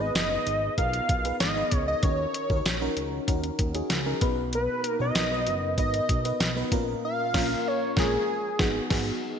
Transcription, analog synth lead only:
0.00 0.15 D#5 loud
0.16 0.74 D#5 loud
0.78 1.37 F5 loud
1.41 1.84 D#5 loud
1.88 2.05 D#5 loud
2.04 2.97 C#5 loud
4.55 4.98 B4 loud
5.01 5.75 D#5 loud
5.79 6.68 D#5 loud
7.05 7.69 F5 loud
7.68 7.98 C#5 loud
8.00 8.88 G#4 loud

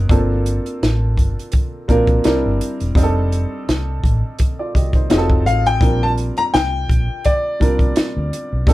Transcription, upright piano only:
0.00 0.12 F#3 medium
0.00 0.12 B3 medium
0.00 0.12 C#4 medium
0.00 0.12 D#4 medium
0.00 0.12 A#4 medium
0.00 0.12 C5 medium
0.09 1.25 A#3 medium
0.09 1.26 C4 medium
0.09 1.26 D4 medium
0.09 1.26 F4 medium
0.09 1.26 A4 medium
1.88 2.24 A#3 medium
1.88 2.24 C4 medium
1.88 2.24 D4 medium
1.88 2.25 F4 medium
1.88 2.25 A#4 medium
2.25 2.83 G3 medium
2.25 2.84 C4 medium
2.25 2.84 D4 medium
2.25 2.84 E4 medium
2.25 2.84 A#4 medium
2.95 4.11 G3 medium
2.95 4.12 C4 medium
2.95 4.12 D4 medium
2.95 4.12 D#4 medium
2.95 3.03 G4 medium
3.03 4.15 A4 medium
4.59 4.74 F4 soft
4.59 4.74 D5 medium
4.75 4.94 G4 medium
4.75 4.93 D#5 medium
4.95 5.09 D#4 medium
4.95 5.28 C5 medium
5.10 5.69 F#3 medium
5.10 5.69 C4 medium
5.10 5.69 D#4 medium
5.10 5.69 F4 medium
5.10 5.18 G#4 medium
5.18 5.73 A4 medium
5.81 6.97 G3 medium
5.81 6.97 C4 medium
5.81 6.97 D4 medium
5.81 6.98 F4 medium
5.81 6.98 A#4 medium
7.60 8.48 G3 medium
7.60 8.48 C4 medium
7.60 8.48 D4 medium
7.60 8.49 F4 medium
7.60 8.49 A#4 medium
8.67 8.73 G3 medium
8.67 8.73 C4 medium
8.67 8.73 D4 medium
8.67 8.73 D#4 medium
8.67 8.73 A4 medium

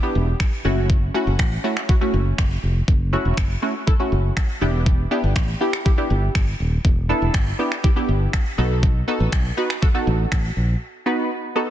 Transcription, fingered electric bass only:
0.15 0.33 E1 medium
0.65 1.08 F#1 medium
1.27 1.35 F#1 medium
2.14 2.31 F#1 medium
2.39 2.56 F#1 medium
2.63 2.81 F1 medium
2.88 3.14 F#1 loud
3.25 3.34 E1 medium
3.37 3.55 F#1 medium
4.12 4.29 F#1 medium
4.62 5.05 E1 medium
5.24 5.32 G1 medium
5.36 5.53 A1 medium
6.10 6.28 G1 medium
6.35 6.53 G1 medium
6.60 6.77 D#1 medium
6.85 7.11 E1 loud
7.22 7.31 E1 medium
7.34 7.51 G1 medium
8.09 8.26 G1 medium
8.58 9.01 B1 loud
9.20 9.29 A1 medium
9.32 9.50 B1 medium
10.07 10.24 A1 medium
10.32 10.49 A1 medium
10.57 10.74 A#1 medium

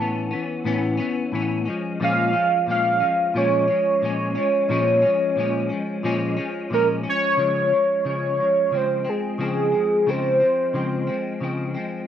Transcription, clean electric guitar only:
0.00 0.32 A2 medium
0.00 0.33 E3 medium
0.00 0.32 B3 medium
0.00 0.30 C#4 medium
0.31 0.64 E3 medium
0.31 0.65 B3 medium
0.31 0.65 C#4 medium
0.64 0.99 A2 medium
0.64 0.99 E3 medium
0.64 0.99 B3 medium
0.64 0.96 C#4 loud
0.97 1.32 E3 medium
0.97 1.33 B3 medium
0.97 1.32 C#4 medium
1.32 1.66 A2 medium
1.32 1.67 E3 medium
1.32 1.67 B3 medium
1.32 1.64 C#4 medium
1.65 2.01 G#3 medium
1.65 2.00 C#4 medium
1.70 1.99 F3 medium
2.00 2.34 A#2 medium
2.00 2.34 F3 medium
2.00 2.33 G#3 medium
2.00 2.31 C#4 medium
2.32 2.67 F3 soft
2.32 2.68 G#3 medium
2.32 2.67 C#4 medium
2.67 3.01 A#2 medium
2.67 3.01 F3 medium
2.67 3.01 G#3 medium
2.67 2.99 C#4 medium
3.00 3.34 F3 soft
3.00 3.35 G#3 soft
3.00 3.34 C#4 medium
3.34 3.68 A#2 medium
3.34 3.69 F3 medium
3.34 3.69 G#3 medium
3.34 3.66 C#4 medium
3.68 4.02 F3 soft
3.68 4.03 G#3 soft
3.68 4.02 C#4 medium
4.02 4.36 A#2 medium
4.02 4.36 F3 medium
4.02 4.36 G#3 medium
4.02 4.34 C#4 medium
4.35 4.69 F3 soft
4.35 4.70 G#3 medium
4.35 4.69 C#4 medium
4.69 5.03 A#2 medium
4.69 5.03 F3 medium
4.69 5.03 G#3 medium
4.69 5.01 C#4 loud
5.02 5.37 G#3 medium
5.02 5.36 C#4 medium
5.06 5.36 F3 medium
5.36 5.70 A#2 medium
5.36 5.71 F3 medium
5.36 5.70 G#3 medium
5.36 5.68 C#4 medium
5.69 6.04 G#3 medium
5.69 6.03 C#4 medium
5.73 6.03 F3 soft
6.03 6.37 A#2 medium
6.03 6.38 F3 medium
6.03 6.37 G#3 medium
6.03 6.35 C#4 medium
6.37 6.70 F3 soft
6.37 6.72 G#3 medium
6.37 6.71 C#4 medium
6.70 7.04 A#2 medium
6.70 7.05 F3 medium
6.70 7.04 G#3 medium
6.70 7.02 C#4 medium
7.03 7.38 G#3 medium
7.03 7.38 C#4 medium
7.07 7.37 F3 medium
7.37 7.71 C#3 medium
7.37 7.72 F3 medium
7.37 7.71 G#3 medium
7.72 8.05 G#3 soft
8.05 8.39 C#3 medium
8.05 8.39 F3 medium
8.05 8.39 G#3 medium
8.40 8.71 F3 soft
8.40 8.73 G#3 soft
8.71 9.06 C#3 medium
8.71 9.07 F3 medium
8.71 9.05 G#3 medium
8.71 9.03 C4 medium
9.05 9.38 F3 soft
9.05 9.39 G#3 soft
9.05 9.39 C4 medium
9.38 9.73 C#3 medium
9.38 9.73 F3 medium
9.38 9.73 G#3 medium
9.38 9.70 C4 medium
9.72 10.07 G#3 soft
9.72 10.07 C4 soft
9.76 10.06 F3 soft
10.06 10.41 C#3 medium
10.06 10.41 F3 medium
10.06 10.41 G#3 medium
10.06 10.39 C4 medium
10.40 10.73 F3 soft
10.40 10.74 G#3 soft
10.40 10.74 C4 soft
10.73 11.08 C#3 medium
10.73 11.08 F3 medium
10.73 11.08 G#3 medium
10.73 11.06 C4 medium
11.07 11.40 F3 soft
11.07 11.42 G#3 medium
11.07 11.42 C4 medium
11.41 11.75 C#3 medium
11.41 11.76 F3 medium
11.41 11.75 G#3 medium
11.41 11.73 C4 medium
11.74 12.07 F3 soft
11.74 12.07 G#3 medium
11.74 12.07 C4 medium

